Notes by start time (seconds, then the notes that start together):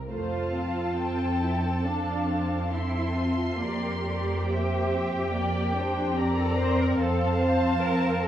Already playing: A#4
0.10 F2 A3 F4 C5 F5 A5
0.54 C4
0.58 A4
0.99 C4 G5
1.43 E4
1.65 C4
1.86 D4 F5
2.28 C4
2.72 C4 E4 A4 E5 C6
3.17 F4
3.61 F2 A#3 G4 A#4 D5
4.05 A3 D5
4.47 A#3 C5 E5 G5
4.91 C4
5.33 A#3 D5 G5
5.75 D4 C5
6.16 C4 A#4 D5 A#5
6.38 A4
6.58 C5
6.79 A#4
6.99 F2 A4 C5 F5 A5
7.41 C5
7.82 C4 A#4
8.24 A4